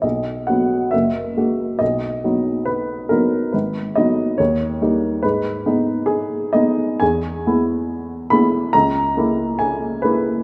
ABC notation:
X:1
M:2/4
L:1/8
Q:1/4=69
K:B
V:1 name="Upright piano"
d f e2 | d2 B A | B d c2 | B2 G d |
[K:Elyd] g3 b | a2 g B |]
V:2 name="Upright piano"
B,,, [F,B,F] F,,, [G,A,F] | B,,, [F,B,D]2 [F,B,D] | G,,, [F,B,D] D,, [=G,A,D] | G,, [G,B,D]2 [G,B,D] |
[K:Elyd] E,, [G,B,E]2 [G,B,E] | C,, [G,A,E]2 [G,A,E] |]